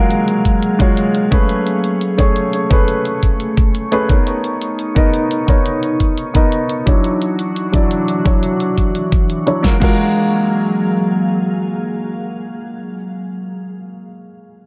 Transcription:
Already playing: ambient pad F#3 A#3 G#4 F5, grand piano G#3 F4 F#4 A#4 C#5
0.11 closed hi-hat
0.28 closed hi-hat
0.45 kick, closed hi-hat
0.63 closed hi-hat
0.79 grand piano G#3 F4 F#4 C#5, kick, closed hi-hat
0.97 closed hi-hat
1.15 closed hi-hat
1.31 grand piano A3 C#4 G#4 B4, ambient pad A3 C#6, kick, closed hi-hat
1.49 closed hi-hat
1.67 closed hi-hat
1.84 closed hi-hat
2.01 closed hi-hat
2.18 grand piano A3 C#4 G#4 C#5, kick, closed hi-hat
2.36 closed hi-hat
2.53 closed hi-hat
2.70 grand piano A3 C#4 G#4 B4, kick, closed hi-hat
2.88 closed hi-hat
3.05 closed hi-hat
3.23 kick, closed hi-hat
3.40 closed hi-hat
3.57 kick, closed hi-hat
3.75 closed hi-hat
3.92 grand piano A3 C#4 G#4 B4, closed hi-hat
4.08 grand piano B3 D#4 A#4 C#5, ambient pad D#4, kick, closed hi-hat
4.27 closed hi-hat
4.44 closed hi-hat
4.62 closed hi-hat
4.79 closed hi-hat
4.95 grand piano B3 D#4 A#4 D#5, kick, closed hi-hat
5.14 closed hi-hat
5.31 closed hi-hat
5.47 grand piano B3 D#4 A#4 C#5, kick, closed hi-hat
5.66 closed hi-hat
5.83 closed hi-hat
6.00 kick, closed hi-hat
6.18 closed hi-hat
6.34 grand piano B3 D#4 A#4 D#5, kick, closed hi-hat
6.52 closed hi-hat
6.70 closed hi-hat
6.86 ambient pad E3 D4 F#4, grand piano F#3 D4 E4 C#5, kick, closed hi-hat
7.04 closed hi-hat
7.22 closed hi-hat
7.39 closed hi-hat
7.56 closed hi-hat
7.72 grand piano F#3 D4 E4 D5, kick, closed hi-hat
7.91 closed hi-hat
8.08 closed hi-hat
8.24 grand piano F#3 D4 E4 C#5, kick, closed hi-hat
8.43 closed hi-hat
8.60 closed hi-hat
8.78 kick, closed hi-hat
8.95 closed hi-hat
9.12 kick, closed hi-hat
9.30 closed hi-hat
9.46 grand piano F#3 D4 E4 C#5, closed hi-hat
9.63 ambient pad F#3 A#3 G#4 F5, grand piano G#3 F4 F#4 A#4, kick, snare
9.80 grand piano G#3 F4 F#4 A#4, kick, crash

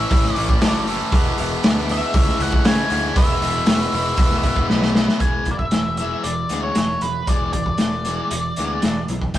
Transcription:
Already playing: overdriven electric guitar E3 A3 C#4 E4, lead electric guitar E5, glockenspiel C#6
0.11 picked electric bass A1, overdriven electric guitar A2 E3 A3 C#4 E4, kick, open hi-hat
0.24 snare
0.34 picked electric bass A1, overdriven electric guitar A2 E3 A3 C#4 E4, lead electric guitar D5, open hi-hat
0.49 kick
0.61 picked electric bass F#1, overdriven electric guitar A2 E3 A3 C#4 E4, glockenspiel A5, snare, open hi-hat
0.87 overdriven electric guitar A2 E3 A3 C#4 E4, glockenspiel E6, open hi-hat
1.12 picked electric bass E1, overdriven electric guitar E2 B2 E3 G#3 B3 E4, glockenspiel D6, kick, open hi-hat
1.38 picked electric bass E1, overdriven electric guitar E2 B2 E3 G#3 B3 E4, open hi-hat
1.63 picked electric bass D2, overdriven electric guitar E2 B2 E3 G#3 B3 E4, snare, open hi-hat
1.89 overdriven electric guitar E2 B2 E3 G#3 B3 E4, lead electric guitar E5, open hi-hat
2.14 picked electric bass C#2, overdriven electric guitar C#3 E3 G#3 C#4 E4, glockenspiel C#6, kick, open hi-hat
2.28 snare
2.40 picked electric bass C#2, overdriven electric guitar C#3 E3 G#3 C#4 E4, lead electric guitar F#5, open hi-hat
2.52 kick
2.65 overdriven electric guitar C#3 E3 G#3 C#4 E4, picked electric bass C#3, lead electric guitar G#5, glockenspiel C#6, snare, open hi-hat
2.90 picked electric bass D2, overdriven electric guitar C#3 E3 G#3 C#4 E4, open hi-hat
3.15 picked electric bass E1, overdriven electric guitar E2 B2 E3 G#3 B3 E4, lead electric guitar E5, glockenspiel B5, kick, open hi-hat
3.41 picked electric bass E1, overdriven electric guitar E2 B2 E3 G#3 B3 E4, open hi-hat
3.66 picked electric bass E1, overdriven electric guitar E2 B2 E3 G#3 B3 E4, glockenspiel C#6, snare, open hi-hat
3.92 picked electric bass E1, overdriven electric guitar E2 B2 E3 G#3 B3 E4, glockenspiel B5, open hi-hat
4.17 picked electric bass E1, overdriven electric guitar E2 B2 E3 G#3 B3 E4, kick, open hi-hat
4.31 snare
4.43 picked electric bass E1, overdriven electric guitar E2 B2 E3 G#3 B3 E4, kick, open hi-hat
4.56 kick
4.70 picked electric bass B1, overdriven electric guitar E2 B2 E3 G#3 B3 E4, glockenspiel G#5, snare
4.82 snare
4.95 overdriven electric guitar E2 B2 E3 G#3 B3 E4, snare
5.08 snare
5.20 picked electric bass E1, overdriven electric guitar E2 E3 G#3, lead electric guitar G#5, kick, closed hi-hat
5.45 picked electric bass E1, overdriven electric guitar E2 E3, kick, closed hi-hat
5.51 lead electric guitar D5
5.59 lead electric guitar E5, kick
5.71 picked electric bass E1, overdriven electric guitar E2 E3, snare, closed hi-hat
5.97 overdriven electric guitar E2 E3 G#3, lead electric guitar E5, closed hi-hat
6.24 picked electric bass E1, overdriven electric guitar E2 E3, lead electric guitar D5, closed hi-hat
6.49 picked electric bass D2, overdriven electric guitar E2 E3 G#3, closed hi-hat
6.63 lead electric guitar C#5
6.75 picked electric bass E1, overdriven electric guitar E2 E3, snare, closed hi-hat
7.01 picked electric bass E1, overdriven electric guitar E2 E3, lead electric guitar B4, closed hi-hat
7.27 picked electric bass E1, overdriven electric guitar E2 E3 G#3, lead electric guitar D5, kick, closed hi-hat
7.53 picked electric bass E1, overdriven electric guitar E2 E3, lead electric guitar D5, kick, closed hi-hat
7.66 kick
7.78 picked electric bass E1, overdriven electric guitar E2, snare, closed hi-hat
7.82 overdriven electric guitar E3
8.05 overdriven electric guitar E2 E3 G#3, closed hi-hat
8.31 picked electric bass E1, overdriven electric guitar E2 E3, closed hi-hat
8.56 picked electric bass D2, overdriven electric guitar E2 E3 G#3, closed hi-hat
8.82 picked electric bass E1, overdriven electric guitar E2 E3, snare, closed hi-hat
9.08 picked electric bass B1, overdriven electric guitar E2 E3, closed hi-hat
9.22 kick
9.34 picked electric bass A1, overdriven electric guitar A2, kick, closed hi-hat

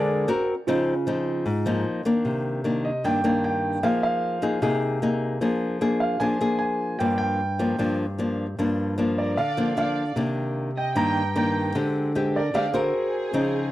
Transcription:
Already playing: nylon-string guitar D3 G#3 C4, grand piano D4 G#4 A#4 D5
0.28 nylon-string guitar C4 F#4 A#4
0.67 nylon-string guitar C#3 F3 C4 D#4, tine electric piano F4
1.07 nylon-string guitar F3 C4 D#4
1.46 nylon-string guitar G#2
1.66 nylon-string guitar F3 A#3 D#4
2.05 nylon-string guitar D#3 A#3 D4
2.25 nylon-string guitar C3
2.64 nylon-string guitar D#3 A#3 D4
2.85 grand piano D#5
3.04 nylon-string guitar G2 D#3 A#3 D4, grand piano G5
3.24 nylon-string guitar D#3 A#3 D4
3.44 grand piano G5
3.83 nylon-string guitar F3 A#3 D#4 G#4, grand piano F5
4.03 grand piano F5
4.42 nylon-string guitar A#3 D#4 G#4
4.62 nylon-string guitar C3 A#3 D#4 G#4
5.02 nylon-string guitar A#3 D#4 G#4
5.41 nylon-string guitar F3 A#3 D4 G#4
5.81 nylon-string guitar A#3 D4 G#4
6.00 grand piano F5
6.20 nylon-string guitar F3 A#3 D4 G#4, grand piano G#5
6.41 nylon-string guitar A#3 D4 G#4
6.59 grand piano G#5
6.99 nylon-string guitar G2 F3 A#3 D4, grand piano G5
7.18 grand piano G5
7.59 nylon-string guitar F3 A#3 D4
7.78 nylon-string guitar G2 F3 A#3 D4
8.19 nylon-string guitar F3 A#3 D4
8.59 nylon-string guitar G2 F3 A#3 D4
8.98 nylon-string guitar F3 A#3 D4
9.18 violin section A#4, grand piano D5
9.37 nylon-string guitar D3, violin section D5, grand piano F5
9.57 nylon-string guitar F3 A#3 D4
9.76 nylon-string guitar F3 A#3 D4, violin section D5, grand piano F5
10.16 nylon-string guitar C3 D#3 A#3 D4
10.76 violin section D#5, grand piano G5
10.95 nylon-string guitar G2 D#3 A#3 D4, violin section G5, grand piano A#5
11.34 nylon-string guitar D#3 A#3 D4, violin section G5, grand piano A#5
11.75 nylon-string guitar D3 G#3 C4 G4
12.15 nylon-string guitar G#3 C4 G4
12.34 violin section A#4, grand piano D5
12.54 nylon-string guitar D3 G#3 C4 G4, violin section D5, grand piano F5
12.73 nylon-string guitar C4 F#4 A#4, violin section G#4, grand piano C5
13.33 nylon-string guitar C#3 F3 C4 D#4

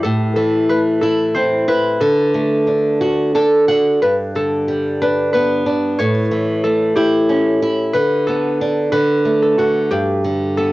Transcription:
Already playing: harp G4
0.03 nylon-string guitar A2, harp A4
0.36 nylon-string guitar E3, harp A4
0.69 nylon-string guitar A3, harp B4
1.01 nylon-string guitar E4, harp A4
1.35 nylon-string guitar C4, harp C5
1.68 nylon-string guitar E4, harp B4
2.00 nylon-string guitar D3, harp A4
2.34 nylon-string guitar A3
2.67 nylon-string guitar D4
3.01 nylon-string guitar F#4
3.35 nylon-string guitar D4 A4
3.68 nylon-string guitar F#4 F#5
4.02 nylon-string guitar G2, harp B4
4.35 nylon-string guitar D3, harp A4
4.68 nylon-string guitar G3
5.02 nylon-string guitar D4, harp B4
5.33 nylon-string guitar B3, harp B4
5.66 nylon-string guitar D4
5.99 nylon-string guitar A2, harp C#5
6.31 nylon-string guitar E3
6.64 nylon-string guitar A3, harp A4
6.95 nylon-string guitar E4, harp G4
7.29 nylon-string guitar C#4
7.62 nylon-string guitar E4
7.93 nylon-string guitar D3, harp B4
8.27 nylon-string guitar B3, harp A4
8.61 nylon-string guitar D4
8.92 nylon-string guitar D3, harp B4
9.25 nylon-string guitar A3
9.43 harp A4
9.58 nylon-string guitar D3, harp F#4
9.91 nylon-string guitar G2, harp G4
10.24 nylon-string guitar D3
10.57 nylon-string guitar B3, harp A4

